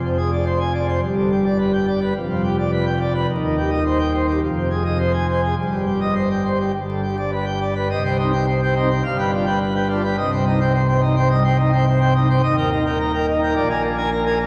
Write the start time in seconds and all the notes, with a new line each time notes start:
Already playing: F1 F2
0.04 C3
0.18 G#4
0.32 D5
0.46 C5
0.60 G#5
0.74 D5
0.88 C5
1.02 G1 G2
1.17 D3
1.32 G4
1.45 D5
1.59 B4
1.73 G5
1.87 D5
2.02 B4
2.15 F1 F2
2.30 F3
2.44 G4
2.58 D5
2.72 B4
2.86 G5
3.01 D5
3.15 B4
3.29 D#1 D#2
3.43 D#3
3.57 G4
3.71 D#5
3.86 C5
3.99 G5
4.13 C5
4.28 G4
4.42 F1 F2
4.56 C3
4.71 G#4
4.85 D#5
4.99 C5
5.13 G#5
5.28 C5
5.43 G#4
5.57 G1 G2
5.72 G3
5.86 G4
6.01 D#5
6.15 C5
6.30 G5
6.45 C5
6.59 G4
6.73 G1 G2
6.88 D3
7.03 G4
7.18 D5
7.32 B4
7.46 G5
7.61 D5
7.75 B4
7.90 C2 C3 D#5
8.05 C5 G5
8.19 C4 D#4
8.33 C5 G5
8.48 C5
8.62 C5 G5
8.76 C4 D#4
8.91 C5 G5
9.04 G1 G2 F5
9.18 B4 G5
9.33 D4 F4
9.46 B4 G5
9.61 B4
9.75 B4 G5
9.89 D4 F4
10.04 B4 G5
10.18 C1 C2 D#5
10.32 C5 G5
10.46 D#4
10.60 C5 G5
10.74 C5
10.89 C5 G5
11.02 D#4
11.16 C5 G5
11.30 G2 D#5
11.45 C5 G5
11.58 D#4
11.73 C5 G5
11.87 C5
12.01 C5 G5
12.15 D#4
12.29 C5 G5
12.43 D#1 D#2 D#5
12.57 A#4 G5
12.72 D#4
12.86 A#4 G5
13.00 A#4
13.14 A#4 G5
13.28 D#4
13.42 A#4 G5
13.56 A#1 A#2 D5
13.70 A#4 G#5
13.84 D4
13.98 A#4 G#5
14.13 A#4
14.26 A#4 G#5
14.40 D4